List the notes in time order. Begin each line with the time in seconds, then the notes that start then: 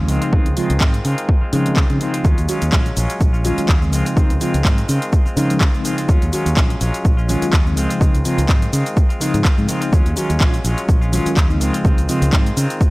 Already playing: C#3 F3 G#3
0.00 G#3 C4 D#4
0.08 C#2 D#3 G#3 C4 F4, open hi-hat
0.21 G#3 C4 F4, closed hi-hat
0.32 C#2 C#3 D#3 F3 G#3 C4 D#4 F4, kick
0.46 C#2, closed hi-hat
0.56 C#3 D#3 F3 G#3 C4 F4, open hi-hat
0.70 C#2, closed hi-hat
0.80 C#3 D#3 F3 G#3 C4 D#4 F4, kick, clap
0.94 closed hi-hat
1.04 C#3 D#3 G#3 C4 F4, open hi-hat
1.18 closed hi-hat
1.29 kick
1.41 G#3 C4 F4, muted fingered electric bass stroke
1.52 C#3 D#3 F3 G#3 C4 D#4 F4, open hi-hat
1.66 C#3 F3 G#3 C4 D#4, closed hi-hat
1.76 D#3 C4 F4, kick, clap
1.89 C#3 F3 G#3 C4 D#4 F4, closed hi-hat
2.00 D#3 G#3 C4 F4, open hi-hat
2.14 G#3 C4 F4, closed hi-hat
2.24 D#2 D#3 F#3 G#3 C#4 F4, kick, shaker
2.38 D#2, closed hi-hat, shaker
2.48 D#3 F#3 G#3 C#4 F4 F#4, open hi-hat, shaker
2.62 D#2, closed hi-hat, shaker
2.72 A#1 D#3 F#3 G#3 C#4 F4, kick, clap, shaker
2.86 closed hi-hat, shaker
2.96 A#1 F#3 G#3 C#4 F4, open hi-hat, shaker
3.10 closed hi-hat, shaker
3.21 A#1, kick, shaker
3.33 G#3 C#4 F4, shaker
3.44 D#3 F#3 G#3 C#4 F4, open hi-hat, shaker
3.58 D#3 F#3 G#3 C#4 F4, muted fingered electric bass stroke, closed hi-hat, shaker
3.68 D#2 F#3 G#3 C#4 F4, kick, clap, shaker
3.81 C#3 F3 G#3 C4 C#4 D#4 F4, shaker
3.92 C#2 D#3 G#3 C4 F4, open hi-hat, shaker
4.05 G#3 C4 F4, closed hi-hat, shaker
4.16 C#2 C#3 D#3 F3 G#3 C4 D#4 F4, kick, shaker
4.30 C#2, closed hi-hat, shaker
4.40 C#3 D#3 F3 G#3 C4 F4, open hi-hat, shaker
4.54 C#2, closed hi-hat, shaker
4.64 G#2 C#3 D#3 F3 G#3 C4 D#4 F4, kick, clap, shaker
4.78 closed hi-hat, shaker
4.88 C#3 D#3 G#3 C4 F4, open hi-hat, shaker
5.02 closed hi-hat, shaker
5.13 kick, shaker
5.25 G#3 C4 F4, muted fingered electric bass stroke, shaker
5.36 C#3 D#3 F3 G#3 C4 D#4 F4, open hi-hat, shaker
5.50 C#3 F3 G#3 C4 D#4, closed hi-hat, shaker
5.60 D#3 G#3 C4 F4, kick, clap, shaker
5.73 C#3 F3 G#3 C4 D#4 F4, shaker
5.84 D#3 G#3 C4 F4, open hi-hat, shaker
5.97 G#3 C4 F4, closed hi-hat, shaker
6.08 D#2 F#3 G#3 C#4 F4, kick, shaker
6.22 D#2, closed hi-hat, shaker
6.32 D#3 F#3 G#3 C#4 F4 F#4, open hi-hat, shaker
6.46 D#2, closed hi-hat, shaker
6.56 A#1 D#3 F#3 G#3 C#4 F4, kick, clap, shaker
6.70 closed hi-hat, shaker
6.80 A#1 F#3 G#3 C#4 F4, open hi-hat, shaker
6.94 closed hi-hat, shaker
7.05 A#1, kick, shaker
7.17 G#3 C#4 F4, shaker
7.28 D#3 F#3 G#3 C#4 F4, open hi-hat, shaker
7.42 D#3 F#3 G#3 C#4 F4, muted fingered electric bass stroke, closed hi-hat, shaker
7.52 D#2 F#3 G#3 C#4 F4, kick, clap, shaker
7.65 C#3 F3 G#3 C4 C#4 D#4 F4, shaker
7.76 C#2 D#3 G#3 C4 F4, open hi-hat, shaker
7.89 G#3 C4 F4, closed hi-hat, shaker
8.00 C#2 C#3 D#3 F3 G#3 C4 D#4 F4, kick, shaker
8.14 C#2, closed hi-hat, shaker
8.24 C#3 D#3 F3 G#3 C4 F4, open hi-hat, shaker
8.38 C#2, closed hi-hat, shaker
8.48 G#2 C#3 D#3 F3 G#3 C4 D#4 F4, kick, clap, shaker
8.62 closed hi-hat, shaker
8.72 C#3 D#3 G#3 C4 F4, open hi-hat, shaker
8.86 closed hi-hat, shaker
8.97 kick, shaker
9.09 G#3 C4 F4, closed hi-hat, shaker
9.20 C#3 D#3 F3 G#3 C4 D#4 F4, open hi-hat, shaker
9.33 G#2 C#3 F3 G#3 C4 D#4, closed hi-hat, shaker
9.44 D#3 G#3 C4 F4, kick, clap, shaker
9.57 G#2 C#3 F3 G#3 C4 D#4 F4, shaker
9.68 D#3 G#3 C4 F4, open hi-hat, shaker
9.81 G#3 C4 F4, closed hi-hat, shaker
9.92 D#2 F#3 G#3 C#4 F4, kick, shaker
10.06 D#2, closed hi-hat, shaker
10.16 D#3 F#3 G#3 C#4 F4 F#4, open hi-hat, shaker
10.30 D#2, closed hi-hat, shaker
10.40 A#1 D#3 F#3 G#3 C#4 F4, kick, clap, shaker
10.54 closed hi-hat, shaker
10.64 A#1 F#3 G#3 C#4 F4, open hi-hat, shaker
10.78 closed hi-hat, shaker
10.89 A#1, kick, shaker
11.01 G#3 C#4 F4, shaker
11.12 D#3 F#3 G#3 C#4 F4, open hi-hat, shaker
11.25 D#3 F#3 G#3 C#4 F4, muted fingered electric bass stroke, closed hi-hat, shaker
11.36 D#2 F#3 G#3 C#4 F4, kick, clap, shaker
11.49 C#3 F3 G#3 C4 C#4 D#4 F4, shaker
11.60 C#2 D#3 G#3 C4 F4, open hi-hat, shaker
11.73 G#3 C4 F4, closed hi-hat, shaker
11.84 C#2 D#3 F3 G#3 C4 F4, kick, shaker
11.98 C#2, closed hi-hat, shaker
12.08 C#3 D#3 F3 G#3 C4 F4, open hi-hat, shaker
12.22 C#2, closed hi-hat, shaker
12.32 C#3 D#3 F3 G#3 C4 D#4 F4, kick, clap, shaker
12.46 closed hi-hat, shaker
12.56 C#3 D#3 G#3 C4 F4, open hi-hat, shaker
12.70 closed hi-hat, shaker
12.81 kick, shaker